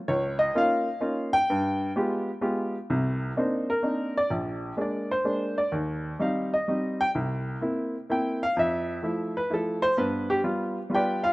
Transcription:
X:1
M:3/4
L:1/8
Q:"Swing" 1/4=127
K:Cm
V:1 name="Upright piano"
_d e f3 g- | g2 z4 | z2 c B2 d | z2 d c2 d |
z2 f e2 g | z4 g f | =e3 =B =A c | =B G z2 [GBdg] [Ff] |]
V:2 name="Upright piano"
_D,,2 [B,_DEF] z [B,DEF] z | G,,2 [A,=B,FG] z [A,B,FG] z | [C,,C,]2 [B,CDE] z [B,CDE] z | B,,,2 [A,B,D] z [A,B,D] z |
E,,2 [G,CE] z [G,CE] z | C,,2 [B,C=E] z [B,CE] z | F,,2 [F,=A,=E] z [F,A,E] z | [G,,=B,]2 [G,B,F] z [G,B,F] z |]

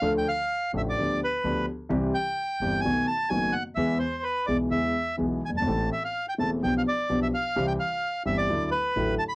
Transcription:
X:1
M:4/4
L:1/16
Q:1/4=128
K:Ephr
V:1 name="Bandoneon"
f g f4 e d3 B4 z2 | z2 g6 ^g2 a2 g2 ^f2 | e2 c2 B2 d2 e4 z2 ^g a- | a2 e f2 g a2 g f d3 e f2- |
f g f4 e d3 B4 a b |]
V:2 name="Grand piano" clef=bass
[D,,D,F,A,DA]2 z4 [A,,,A,,F,A,DA]2 [D,,D,F,B,DG]2 z2 [D,,D,F,B,DG]2 z2 | [C,,C,E,G,CG]2 z4 [G,,,G,,E,G,CG]2 [B,,,B,,^D,A,B,^F]2 z2 [^F,,,^F,,D,A,B,F]2 z2 | [E,,E,^G,B,^G]2 z4 [B,,,B,,E,G,B,G]2 [E,,E,G,B,G]2 z2 [B,,,B,,E,G,B,G]2 z/2 ^F,,,/2 =G,,,/2 ^G,,,/2 | [A,,,A,,E,A,CA]2 z4 [E,,,E,,E,A,CA]2 [B,,,B,,F,B,DG]2 z2 [B,,,B,,F,B,DG]2 z2 |
[C,,C,E,G,CG]2 z4 [G,,,G,,E,G,CG]2 [D,,D,^F,A,E]2 z2 [A,,,A,,D,F,A,E]2 z2 |]
V:3 name="Upright bass" clef=bass
D,,3/2 z4 z/2 A,,,3/2 z/2 D,,3/2 z2 z/2 D,,3/2 z2 z/2 | C,,3/2 z4 z/2 G,,,3/2 z/2 B,,,3/2 z2 z/2 ^F,,,3/2 z2 z/2 | E,,3/2 z4 z/2 B,,,3/2 z/2 E,,3/2 z2 z/2 B,,,3/2 z ^F,,,/2 G,,,/2 ^G,,,/2 | A,,,3/2 z4 z/2 E,,,3/2 z/2 B,,,3/2 z2 z/2 B,,,3/2 z2 z/2 |
C,,3/2 z4 z/2 G,,,3/2 z/2 D,,3/2 z2 z/2 A,,,3/2 z2 z/2 |]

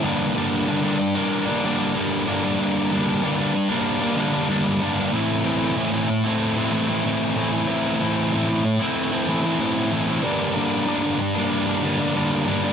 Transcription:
X:1
M:4/4
L:1/16
Q:1/4=94
K:Gdor
V:1 name="Distorted electric guitar"
[G,,D,G,B,D]2 [D,G,B,D]2 [G,,D,G,B,D] [G,B,D]2 [G,B,D]2 [G,B,D] [D,G,B,D] [G,B,D] [G,,D,G,B,D]2 [D,G,B,D] [G,B,D] | [G,,D,G,B,D]2 [D,G,B,D]2 [G,,D,G,B,D] [G,B,D]2 [G,B,D]2 [G,B,D] [D,G,B,D] [G,B,D] [G,,D,G,B,D]2 [D,G,B,D] [G,B,D] | [A,,E,A,CE]2 [E,A,CE]2 [A,,E,A,CE] [A,CE]2 [A,CE]2 [A,CE] [E,A,CE] [A,CE] [A,,E,A,CE]2 [E,A,CE] [A,CE] | [A,,E,A,CE]2 [E,A,CE]2 [A,,E,A,CE] [A,CE]2 [A,CE]2 [A,CE] [E,A,CE] [A,CE] [A,,E,A,CE]2 [E,A,CE] [A,CE] |
[G,,D,G,B,D]2 [D,G,B,D]2 [G,,D,G,B,D] [G,B,D]2 [G,B,D]2 [G,B,D] [D,G,B,D] [G,B,D] [G,,D,G,B,D]2 [D,G,B,D] [G,B,D] |]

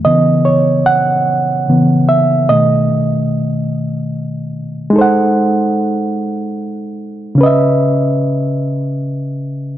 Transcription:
X:1
M:6/8
L:1/8
Q:3/8=49
K:C#m
V:1 name="Reed electric piano"
d c f2 z e | d4- d z | [G,DA^Bf]6 | [C,CBde]6 |]
V:2 name="Reed electric piano" clef=bass
[C,E,B,]4 [C,E,B,] z | [B,,D,A,]6 | z6 | z6 |]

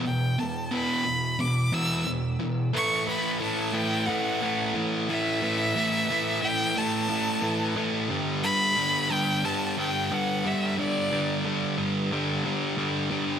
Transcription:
X:1
M:4/4
L:1/8
Q:1/4=90
K:Ador
V:1 name="Violin"
g a b2 d' e' z2 | ^c' b a g f2 z e- | e3 g a3 z | z b2 g a g f e |
d2 z6 |]
V:2 name="Distorted electric guitar" clef=bass
[E,,B,,] [E,,B,,] [E,,B,,E,] [E,,B,,] [E,,B,,] [E,,B,,E,] [E,,B,,] [E,,B,,] | [A,,E,A,] [A,,E,A,] [A,,E,A,] [A,,E,A,] [A,,E,A,] [A,,E,A,] [A,,E,A,] [A,,E,A,] | [A,,E,A,] [A,,E,A,] [A,,E,A,] [A,,E,A,] [A,,E,A,] [A,,E,A,] [A,,E,A,] [A,,E,A,] | [G,,D,G,] [G,,D,G,] [G,,D,G,] [G,,D,G,] [G,,D,G,] [G,,D,G,] [G,,D,G,] [G,,D,G,] |
[G,,D,G,] [G,,D,G,] [G,,D,G,] [G,,D,G,] [G,,D,G,] [G,,D,G,] [G,,D,G,] [G,,D,G,] |]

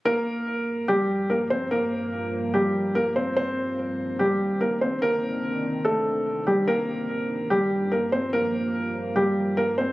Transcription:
X:1
M:4/4
L:1/8
Q:1/4=145
K:Gm
V:1 name="Upright piano"
[B,B]4 [G,G]2 [B,B] [Cc] | [B,B]4 [G,G]2 [B,B] [Cc] | [Cc]4 [G,G]2 [B,B] [Cc] | [B,B]4 [A,A]3 [G,G] |
[B,B]4 [G,G]2 [B,B] [Cc] | [B,B]4 [G,G]2 [B,B] [Cc] |]
V:2 name="Ambient pad" clef=bass
[G,,F,B,]8- | [G,,F,B,]8 | [E,CD]8- | [E,CD]8 |
[G,,F,B,]8- | [G,,F,B,]8 |]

